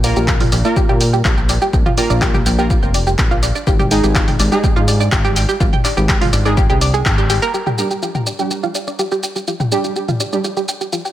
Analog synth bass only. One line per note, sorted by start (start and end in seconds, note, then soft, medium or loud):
0.00 0.13 A#1 medium
0.16 0.49 A#1 loud
0.52 0.63 A#1 medium
0.89 1.22 A#2 medium
1.25 1.58 A#1 medium
1.73 1.84 A#1 loud
2.10 2.43 A#1 medium
2.46 2.80 A#1 medium
2.83 3.16 F1 medium
3.19 3.52 A#1 medium
3.67 4.01 G#1 loud
4.04 4.37 G#1 medium
4.40 4.50 G#1 medium
4.76 5.09 G#2 medium
5.12 5.46 G#1 medium
5.60 5.71 G#1 medium
5.97 6.30 G#1 medium
6.33 6.67 G#1 medium
6.70 7.03 C2 medium
7.06 7.39 G#1 loud